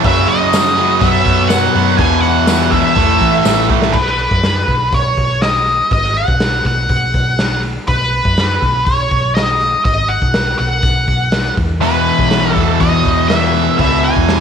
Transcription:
0.04 distorted electric guitar F#2 C#3 F#3, picked electric bass F#2, lead electric guitar E5, kick, open hi-hat
0.29 lead electric guitar D#5, open hi-hat
0.53 snare, open hi-hat, tambourine
0.77 distorted electric guitar F#2 C#3 F#3, open hi-hat
1.00 picked electric bass F#2, distorted electric guitar B2 F#3 B3, lead electric guitar E5, kick, open hi-hat
1.25 picked electric bass F#2, kick, open hi-hat
1.48 lead electric guitar F#5, snare, open hi-hat, tambourine
1.75 picked electric bass F#2, distorted electric guitar B2 F#3 B3, open hi-hat
1.97 distorted electric guitar E2 B2 E3, picked electric bass E2, lead electric guitar G#5, kick, open hi-hat
2.21 lead electric guitar F#5, open hi-hat
2.47 snare, open hi-hat, tambourine
2.71 distorted electric guitar E2 B2 E3, lead electric guitar E5, kick, open hi-hat
2.96 picked electric bass E2, distorted electric guitar A2 E3 A3, kick, open hi-hat
3.21 picked electric bass E3, kick, open hi-hat
3.45 picked electric bass A1, snare, open hi-hat, tambourine
3.70 picked electric bass B1, distorted electric guitar A2 E3 A3, kick
3.82 snare
3.93 picked electric bass B1, lead electric guitar B4, kick, crash
4.06 snare
4.19 open hi-hat
4.31 picked electric bass F#2, kick
4.43 snare, open hi-hat
4.68 picked electric bass B1, kick, open hi-hat
4.92 picked electric bass B1, lead electric guitar C#5, kick, open hi-hat
5.17 picked electric bass B1, kick, open hi-hat
5.42 lead electric guitar D#5, snare, open hi-hat
5.67 open hi-hat
5.91 picked electric bass G#1, lead electric guitar D#5, kick, open hi-hat
6.04 snare
6.15 lead electric guitar F#5, open hi-hat
6.28 picked electric bass B1, kick
6.40 snare, open hi-hat
6.65 picked electric bass B1, lead electric guitar F#5, kick, open hi-hat
6.89 picked electric bass B1, kick, open hi-hat
7.14 picked electric bass B1, kick, open hi-hat
7.38 snare, open hi-hat
7.63 open hi-hat
7.87 picked electric bass B1, lead electric guitar B4, kick, open hi-hat
8.12 open hi-hat
8.25 picked electric bass F#2, kick
8.37 snare, open hi-hat
8.62 picked electric bass B1, kick, open hi-hat
8.85 picked electric bass B1, lead electric guitar C#5, kick, open hi-hat
9.11 picked electric bass B1, kick, open hi-hat
9.35 lead electric guitar D#5, snare, open hi-hat
9.60 open hi-hat
9.84 picked electric bass G#1, lead electric guitar D#5, kick, open hi-hat
10.08 lead electric guitar F#5, open hi-hat
10.22 picked electric bass B1, kick
10.34 snare, open hi-hat
10.58 picked electric bass B1, lead electric guitar F#5, open hi-hat
10.82 picked electric bass B1, kick, open hi-hat
11.07 picked electric bass B1, kick, open hi-hat
11.32 snare, open hi-hat
11.57 picked electric bass E2, kick, open hi-hat
11.81 distorted electric guitar E2 B2 E3, lead electric guitar B4, open hi-hat
12.06 open hi-hat
12.19 picked electric bass B1, kick
12.31 snare, open hi-hat
12.44 snare
12.54 picked electric bass E2, distorted electric guitar B2 E3, lead electric guitar A4, kick, open hi-hat
12.58 distorted electric guitar E2
12.80 overdriven electric guitar E2 B2 E3, picked electric bass E2, lead electric guitar D#5, kick, open hi-hat
13.05 picked electric bass E2, kick, open hi-hat
13.28 distorted electric guitar E2 B2 E3, lead electric guitar E5, snare, open hi-hat
13.54 open hi-hat
13.78 picked electric bass C#2, distorted electric guitar E2 B2 E3, lead electric guitar E5, kick, open hi-hat
14.04 lead electric guitar G#5, open hi-hat
14.16 picked electric bass E2, kick
14.28 snare, open hi-hat

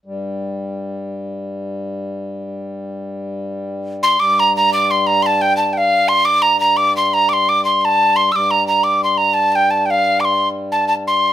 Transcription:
0.05 harmonium G2 G3
4.03 tin whistle C6
4.18 harmonium G2 G3, tin whistle D6
4.40 tin whistle A#5
4.57 tin whistle A#5
4.73 tin whistle D6
4.91 tin whistle C6
5.07 tin whistle A#5
5.22 tin whistle A5 C6
5.41 tin whistle G5
5.57 tin whistle A5
5.73 tin whistle G5
5.78 tin whistle F5
6.08 tin whistle C6
6.25 tin whistle D6
6.42 tin whistle A#5
6.60 tin whistle A#5
6.77 tin whistle D6
6.97 tin whistle C6
7.14 tin whistle A#5
7.29 tin whistle D6
7.33 tin whistle C6
7.49 tin whistle D6
7.65 tin whistle C6
7.81 tin whistle A5 C6
8.16 tin whistle C6
8.32 harmonium G2 G3, tin whistle D6 E6
8.51 tin whistle A#5
8.68 tin whistle A#5
8.84 tin whistle D6
9.04 tin whistle C6
9.18 tin whistle A#5
9.34 tin whistle A5
9.52 tin whistle G5 A5
9.71 tin whistle A5
9.86 tin whistle G5
9.90 tin whistle F5
10.20 tin whistle D6
10.25 tin whistle C6
10.72 tin whistle A5
10.88 tin whistle A5
11.07 tin whistle C6

